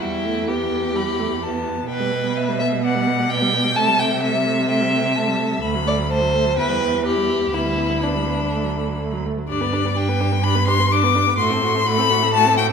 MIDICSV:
0, 0, Header, 1, 5, 480
1, 0, Start_track
1, 0, Key_signature, 1, "major"
1, 0, Tempo, 468750
1, 16, Time_signature, 4, 2, 24, 8
1, 6736, Tempo, 485437
1, 9616, Tempo, 473560
1, 12894, End_track
2, 0, Start_track
2, 0, Title_t, "Violin"
2, 0, Program_c, 0, 40
2, 24, Note_on_c, 0, 79, 58
2, 499, Note_off_c, 0, 79, 0
2, 506, Note_on_c, 0, 79, 59
2, 983, Note_on_c, 0, 83, 64
2, 999, Note_off_c, 0, 79, 0
2, 1461, Note_on_c, 0, 81, 64
2, 1477, Note_off_c, 0, 83, 0
2, 1930, Note_off_c, 0, 81, 0
2, 1936, Note_on_c, 0, 79, 61
2, 2427, Note_on_c, 0, 76, 71
2, 2443, Note_off_c, 0, 79, 0
2, 2906, Note_on_c, 0, 74, 57
2, 2922, Note_off_c, 0, 76, 0
2, 3845, Note_off_c, 0, 74, 0
2, 3851, Note_on_c, 0, 76, 65
2, 4802, Note_on_c, 0, 79, 70
2, 4817, Note_off_c, 0, 76, 0
2, 5286, Note_on_c, 0, 81, 71
2, 5301, Note_off_c, 0, 79, 0
2, 5762, Note_off_c, 0, 81, 0
2, 5768, Note_on_c, 0, 83, 70
2, 6252, Note_on_c, 0, 81, 66
2, 6267, Note_off_c, 0, 83, 0
2, 6725, Note_off_c, 0, 81, 0
2, 6731, Note_on_c, 0, 79, 64
2, 7197, Note_off_c, 0, 79, 0
2, 7208, Note_on_c, 0, 83, 66
2, 7677, Note_off_c, 0, 83, 0
2, 7684, Note_on_c, 0, 83, 62
2, 9342, Note_off_c, 0, 83, 0
2, 9609, Note_on_c, 0, 74, 78
2, 10102, Note_on_c, 0, 79, 85
2, 10117, Note_off_c, 0, 74, 0
2, 10577, Note_on_c, 0, 83, 97
2, 10592, Note_off_c, 0, 79, 0
2, 10811, Note_off_c, 0, 83, 0
2, 10817, Note_on_c, 0, 84, 95
2, 11062, Note_on_c, 0, 86, 99
2, 11077, Note_off_c, 0, 84, 0
2, 11528, Note_off_c, 0, 86, 0
2, 11534, Note_on_c, 0, 84, 91
2, 12026, Note_on_c, 0, 83, 108
2, 12041, Note_off_c, 0, 84, 0
2, 12495, Note_off_c, 0, 83, 0
2, 12501, Note_on_c, 0, 81, 107
2, 12733, Note_off_c, 0, 81, 0
2, 12741, Note_on_c, 0, 79, 105
2, 12822, Note_off_c, 0, 79, 0
2, 12894, End_track
3, 0, Start_track
3, 0, Title_t, "Violin"
3, 0, Program_c, 1, 40
3, 8, Note_on_c, 1, 64, 72
3, 487, Note_on_c, 1, 67, 66
3, 503, Note_off_c, 1, 64, 0
3, 1694, Note_off_c, 1, 67, 0
3, 1931, Note_on_c, 1, 71, 80
3, 2618, Note_off_c, 1, 71, 0
3, 2655, Note_on_c, 1, 76, 74
3, 2737, Note_off_c, 1, 76, 0
3, 2901, Note_on_c, 1, 78, 76
3, 3371, Note_on_c, 1, 79, 91
3, 3386, Note_off_c, 1, 78, 0
3, 3848, Note_on_c, 1, 81, 103
3, 3863, Note_off_c, 1, 79, 0
3, 4085, Note_on_c, 1, 79, 86
3, 4100, Note_off_c, 1, 81, 0
3, 4318, Note_off_c, 1, 79, 0
3, 4325, Note_on_c, 1, 76, 82
3, 4792, Note_off_c, 1, 76, 0
3, 4802, Note_on_c, 1, 76, 84
3, 5746, Note_off_c, 1, 76, 0
3, 6011, Note_on_c, 1, 74, 78
3, 6093, Note_off_c, 1, 74, 0
3, 6255, Note_on_c, 1, 72, 85
3, 6728, Note_off_c, 1, 72, 0
3, 6741, Note_on_c, 1, 71, 92
3, 7202, Note_off_c, 1, 71, 0
3, 7209, Note_on_c, 1, 67, 77
3, 7685, Note_on_c, 1, 64, 78
3, 7700, Note_off_c, 1, 67, 0
3, 8165, Note_on_c, 1, 62, 59
3, 8180, Note_off_c, 1, 64, 0
3, 9135, Note_off_c, 1, 62, 0
3, 9615, Note_on_c, 1, 67, 57
3, 9733, Note_on_c, 1, 71, 50
3, 9748, Note_off_c, 1, 67, 0
3, 9859, Note_on_c, 1, 67, 53
3, 9874, Note_off_c, 1, 71, 0
3, 9978, Note_on_c, 1, 71, 50
3, 9993, Note_off_c, 1, 67, 0
3, 10092, Note_off_c, 1, 71, 0
3, 10098, Note_on_c, 1, 67, 51
3, 10217, Note_on_c, 1, 71, 51
3, 10232, Note_off_c, 1, 67, 0
3, 10334, Note_on_c, 1, 67, 50
3, 10349, Note_off_c, 1, 71, 0
3, 10455, Note_on_c, 1, 71, 46
3, 10470, Note_off_c, 1, 67, 0
3, 10571, Note_off_c, 1, 71, 0
3, 10577, Note_on_c, 1, 67, 59
3, 10687, Note_on_c, 1, 71, 49
3, 10702, Note_off_c, 1, 67, 0
3, 10818, Note_on_c, 1, 67, 58
3, 10833, Note_off_c, 1, 71, 0
3, 10939, Note_on_c, 1, 71, 54
3, 10954, Note_off_c, 1, 67, 0
3, 11046, Note_off_c, 1, 71, 0
3, 11052, Note_on_c, 1, 67, 58
3, 11175, Note_on_c, 1, 71, 50
3, 11190, Note_off_c, 1, 67, 0
3, 11302, Note_on_c, 1, 67, 56
3, 11317, Note_off_c, 1, 71, 0
3, 11423, Note_on_c, 1, 71, 55
3, 11438, Note_off_c, 1, 67, 0
3, 11539, Note_off_c, 1, 71, 0
3, 11545, Note_on_c, 1, 66, 67
3, 11676, Note_on_c, 1, 69, 56
3, 11691, Note_off_c, 1, 66, 0
3, 11787, Note_on_c, 1, 66, 60
3, 11802, Note_off_c, 1, 69, 0
3, 11906, Note_on_c, 1, 69, 56
3, 11922, Note_off_c, 1, 66, 0
3, 12018, Note_off_c, 1, 69, 0
3, 12024, Note_on_c, 1, 66, 58
3, 12154, Note_on_c, 1, 69, 62
3, 12169, Note_off_c, 1, 66, 0
3, 12266, Note_on_c, 1, 66, 65
3, 12281, Note_off_c, 1, 69, 0
3, 12384, Note_on_c, 1, 69, 56
3, 12399, Note_off_c, 1, 66, 0
3, 12501, Note_off_c, 1, 69, 0
3, 12509, Note_on_c, 1, 66, 72
3, 12627, Note_on_c, 1, 69, 63
3, 12643, Note_off_c, 1, 66, 0
3, 12740, Note_on_c, 1, 66, 65
3, 12755, Note_off_c, 1, 69, 0
3, 12861, Note_on_c, 1, 69, 55
3, 12876, Note_off_c, 1, 66, 0
3, 12894, Note_off_c, 1, 69, 0
3, 12894, End_track
4, 0, Start_track
4, 0, Title_t, "Viola"
4, 0, Program_c, 2, 41
4, 10, Note_on_c, 2, 55, 49
4, 253, Note_on_c, 2, 57, 53
4, 268, Note_off_c, 2, 55, 0
4, 494, Note_on_c, 2, 59, 51
4, 510, Note_off_c, 2, 57, 0
4, 967, Note_off_c, 2, 59, 0
4, 973, Note_on_c, 2, 55, 52
4, 1055, Note_off_c, 2, 55, 0
4, 1215, Note_on_c, 2, 57, 50
4, 1297, Note_off_c, 2, 57, 0
4, 1455, Note_on_c, 2, 59, 54
4, 1928, Note_off_c, 2, 59, 0
4, 1937, Note_on_c, 2, 59, 49
4, 2053, Note_on_c, 2, 55, 50
4, 2068, Note_off_c, 2, 59, 0
4, 2169, Note_on_c, 2, 59, 46
4, 2184, Note_off_c, 2, 55, 0
4, 2290, Note_on_c, 2, 55, 44
4, 2305, Note_off_c, 2, 59, 0
4, 2411, Note_off_c, 2, 55, 0
4, 2417, Note_on_c, 2, 59, 50
4, 2543, Note_on_c, 2, 55, 45
4, 2558, Note_off_c, 2, 59, 0
4, 2668, Note_on_c, 2, 59, 46
4, 2684, Note_off_c, 2, 55, 0
4, 2786, Note_on_c, 2, 55, 45
4, 2802, Note_off_c, 2, 59, 0
4, 2898, Note_off_c, 2, 55, 0
4, 2904, Note_on_c, 2, 59, 52
4, 3022, Note_on_c, 2, 55, 47
4, 3038, Note_off_c, 2, 59, 0
4, 3141, Note_on_c, 2, 59, 51
4, 3156, Note_off_c, 2, 55, 0
4, 3260, Note_on_c, 2, 55, 46
4, 3275, Note_off_c, 2, 59, 0
4, 3366, Note_off_c, 2, 55, 0
4, 3373, Note_on_c, 2, 59, 54
4, 3494, Note_on_c, 2, 55, 51
4, 3509, Note_off_c, 2, 59, 0
4, 3617, Note_on_c, 2, 59, 49
4, 3632, Note_off_c, 2, 55, 0
4, 3729, Note_on_c, 2, 55, 49
4, 3745, Note_off_c, 2, 59, 0
4, 3841, Note_off_c, 2, 55, 0
4, 3847, Note_on_c, 2, 57, 57
4, 3964, Note_on_c, 2, 55, 49
4, 3980, Note_off_c, 2, 57, 0
4, 4088, Note_on_c, 2, 57, 53
4, 4104, Note_off_c, 2, 55, 0
4, 4209, Note_on_c, 2, 55, 49
4, 4225, Note_off_c, 2, 57, 0
4, 4321, Note_off_c, 2, 55, 0
4, 4327, Note_on_c, 2, 57, 53
4, 4446, Note_on_c, 2, 55, 48
4, 4461, Note_off_c, 2, 57, 0
4, 4565, Note_on_c, 2, 57, 51
4, 4580, Note_off_c, 2, 55, 0
4, 4686, Note_on_c, 2, 55, 47
4, 4702, Note_off_c, 2, 57, 0
4, 4796, Note_off_c, 2, 55, 0
4, 4803, Note_on_c, 2, 57, 52
4, 4924, Note_on_c, 2, 55, 46
4, 4939, Note_off_c, 2, 57, 0
4, 5042, Note_on_c, 2, 57, 49
4, 5057, Note_off_c, 2, 55, 0
4, 5161, Note_on_c, 2, 55, 44
4, 5177, Note_off_c, 2, 57, 0
4, 5274, Note_off_c, 2, 55, 0
4, 5280, Note_on_c, 2, 57, 52
4, 5398, Note_on_c, 2, 55, 52
4, 5414, Note_off_c, 2, 57, 0
4, 5518, Note_on_c, 2, 57, 47
4, 5533, Note_off_c, 2, 55, 0
4, 5637, Note_on_c, 2, 55, 45
4, 5653, Note_off_c, 2, 57, 0
4, 5753, Note_off_c, 2, 55, 0
4, 5759, Note_on_c, 2, 57, 56
4, 5882, Note_on_c, 2, 54, 49
4, 5898, Note_off_c, 2, 57, 0
4, 5995, Note_on_c, 2, 57, 53
4, 6011, Note_off_c, 2, 54, 0
4, 6119, Note_on_c, 2, 54, 49
4, 6135, Note_off_c, 2, 57, 0
4, 6240, Note_off_c, 2, 54, 0
4, 6246, Note_on_c, 2, 57, 51
4, 6359, Note_on_c, 2, 54, 46
4, 6374, Note_off_c, 2, 57, 0
4, 6488, Note_on_c, 2, 57, 49
4, 6504, Note_off_c, 2, 54, 0
4, 6604, Note_on_c, 2, 54, 42
4, 6619, Note_off_c, 2, 57, 0
4, 6720, Note_off_c, 2, 54, 0
4, 6726, Note_on_c, 2, 52, 50
4, 6847, Note_on_c, 2, 55, 45
4, 6862, Note_off_c, 2, 52, 0
4, 6970, Note_on_c, 2, 52, 45
4, 6984, Note_off_c, 2, 55, 0
4, 7087, Note_on_c, 2, 55, 41
4, 7102, Note_off_c, 2, 52, 0
4, 7192, Note_off_c, 2, 55, 0
4, 7198, Note_on_c, 2, 52, 49
4, 7315, Note_on_c, 2, 55, 48
4, 7330, Note_off_c, 2, 52, 0
4, 7438, Note_on_c, 2, 52, 44
4, 7453, Note_off_c, 2, 55, 0
4, 7557, Note_on_c, 2, 55, 39
4, 7572, Note_off_c, 2, 52, 0
4, 7667, Note_off_c, 2, 55, 0
4, 7673, Note_on_c, 2, 59, 52
4, 7802, Note_on_c, 2, 55, 47
4, 7817, Note_off_c, 2, 59, 0
4, 7919, Note_on_c, 2, 59, 45
4, 7934, Note_off_c, 2, 55, 0
4, 8036, Note_on_c, 2, 55, 42
4, 8050, Note_off_c, 2, 59, 0
4, 8151, Note_off_c, 2, 55, 0
4, 8157, Note_on_c, 2, 59, 44
4, 8287, Note_on_c, 2, 55, 41
4, 8301, Note_off_c, 2, 59, 0
4, 8408, Note_on_c, 2, 59, 41
4, 8423, Note_off_c, 2, 55, 0
4, 8530, Note_on_c, 2, 55, 38
4, 8544, Note_off_c, 2, 59, 0
4, 8638, Note_off_c, 2, 55, 0
4, 8644, Note_on_c, 2, 57, 46
4, 8769, Note_on_c, 2, 54, 40
4, 8783, Note_off_c, 2, 57, 0
4, 8894, Note_on_c, 2, 57, 41
4, 8909, Note_off_c, 2, 54, 0
4, 9010, Note_on_c, 2, 54, 41
4, 9025, Note_off_c, 2, 57, 0
4, 9129, Note_off_c, 2, 54, 0
4, 9135, Note_on_c, 2, 57, 45
4, 9254, Note_on_c, 2, 54, 44
4, 9269, Note_off_c, 2, 57, 0
4, 9378, Note_on_c, 2, 57, 42
4, 9393, Note_off_c, 2, 54, 0
4, 9497, Note_on_c, 2, 54, 40
4, 9512, Note_off_c, 2, 57, 0
4, 9610, Note_off_c, 2, 54, 0
4, 9616, Note_on_c, 2, 62, 59
4, 9735, Note_on_c, 2, 59, 51
4, 9751, Note_off_c, 2, 62, 0
4, 9855, Note_on_c, 2, 62, 52
4, 9870, Note_off_c, 2, 59, 0
4, 9970, Note_on_c, 2, 59, 49
4, 9985, Note_off_c, 2, 62, 0
4, 10088, Note_off_c, 2, 59, 0
4, 10094, Note_on_c, 2, 62, 54
4, 10219, Note_on_c, 2, 59, 48
4, 10234, Note_off_c, 2, 62, 0
4, 10335, Note_on_c, 2, 62, 51
4, 10351, Note_off_c, 2, 59, 0
4, 10453, Note_on_c, 2, 59, 44
4, 10469, Note_off_c, 2, 62, 0
4, 10563, Note_off_c, 2, 59, 0
4, 10569, Note_on_c, 2, 62, 54
4, 10692, Note_on_c, 2, 59, 51
4, 10707, Note_off_c, 2, 62, 0
4, 10810, Note_on_c, 2, 62, 54
4, 10825, Note_off_c, 2, 59, 0
4, 10931, Note_on_c, 2, 59, 50
4, 10946, Note_off_c, 2, 62, 0
4, 11046, Note_off_c, 2, 59, 0
4, 11053, Note_on_c, 2, 62, 59
4, 11177, Note_on_c, 2, 59, 58
4, 11193, Note_off_c, 2, 62, 0
4, 11295, Note_on_c, 2, 62, 55
4, 11310, Note_off_c, 2, 59, 0
4, 11414, Note_on_c, 2, 59, 50
4, 11429, Note_off_c, 2, 62, 0
4, 11532, Note_off_c, 2, 59, 0
4, 11538, Note_on_c, 2, 57, 64
4, 11655, Note_on_c, 2, 60, 58
4, 11670, Note_off_c, 2, 57, 0
4, 11780, Note_on_c, 2, 57, 59
4, 11795, Note_off_c, 2, 60, 0
4, 11903, Note_on_c, 2, 60, 60
4, 11918, Note_off_c, 2, 57, 0
4, 12014, Note_off_c, 2, 60, 0
4, 12020, Note_on_c, 2, 57, 62
4, 12138, Note_on_c, 2, 60, 56
4, 12154, Note_off_c, 2, 57, 0
4, 12263, Note_on_c, 2, 57, 59
4, 12278, Note_off_c, 2, 60, 0
4, 12386, Note_on_c, 2, 60, 54
4, 12401, Note_off_c, 2, 57, 0
4, 12497, Note_off_c, 2, 60, 0
4, 12503, Note_on_c, 2, 57, 65
4, 12622, Note_on_c, 2, 60, 56
4, 12637, Note_off_c, 2, 57, 0
4, 12744, Note_on_c, 2, 57, 61
4, 12759, Note_off_c, 2, 60, 0
4, 12880, Note_off_c, 2, 57, 0
4, 12894, End_track
5, 0, Start_track
5, 0, Title_t, "Cello"
5, 0, Program_c, 3, 42
5, 10, Note_on_c, 3, 40, 53
5, 1896, Note_off_c, 3, 40, 0
5, 1929, Note_on_c, 3, 47, 60
5, 3841, Note_on_c, 3, 48, 64
5, 3856, Note_off_c, 3, 47, 0
5, 5758, Note_off_c, 3, 48, 0
5, 5764, Note_on_c, 3, 38, 64
5, 6730, Note_on_c, 3, 40, 61
5, 6745, Note_off_c, 3, 38, 0
5, 7675, Note_off_c, 3, 40, 0
5, 7681, Note_on_c, 3, 38, 54
5, 9378, Note_off_c, 3, 38, 0
5, 9609, Note_on_c, 3, 43, 60
5, 11496, Note_off_c, 3, 43, 0
5, 11545, Note_on_c, 3, 45, 72
5, 12894, Note_off_c, 3, 45, 0
5, 12894, End_track
0, 0, End_of_file